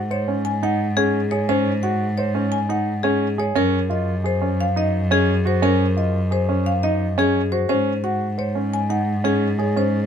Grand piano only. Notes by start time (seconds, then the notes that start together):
0.11 C5
0.28 C#4
0.63 D#4
0.97 C#4
1.32 G#4
1.49 C#4
1.83 F#4
2.18 C5
2.35 C#4
2.69 D#4
3.04 C#4
3.38 G#4
3.55 C#4
3.90 F4
4.24 G#4
4.42 C#4
4.76 D#4
5.11 C#4
5.45 F#4
5.62 C#4
5.97 F4
6.31 G#4
6.49 C#4
6.84 D#4
7.18 C#4
7.52 F#4
7.69 C#4
8.04 F#4
8.38 C5
8.55 C#4
8.90 D#4
9.24 C#4
9.59 G#4
9.76 C#4